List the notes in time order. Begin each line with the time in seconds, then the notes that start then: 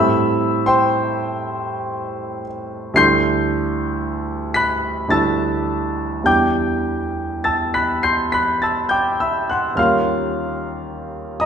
Already playing: A2 G3 C4 E4 A4 E5 B5 E6
0.66 C5 G5 C6
2.94 D2 G3 D4 E4 A4 C6 G6 C7
4.54 B5 F#6 B6
5.08 D2 G3 D4 E4 A4 A5 E6 A6
6.24 E2 G3 D4 E4 G4 G5 D6 G6
7.44 A5 E6 A6
7.74 B5 F#6 B6
8.03 C6 G6 C7
8.32 B5 F#6 B6
8.62 A5 E6 A6
8.89 G5 D6 G6
9.20 E5 B5 E6
9.50 F#5 C6 F#6
9.75 D#2 G3 C#4 F4 A#4 F5 F6
9.79 C6
11.40 D#5 A#5 D#6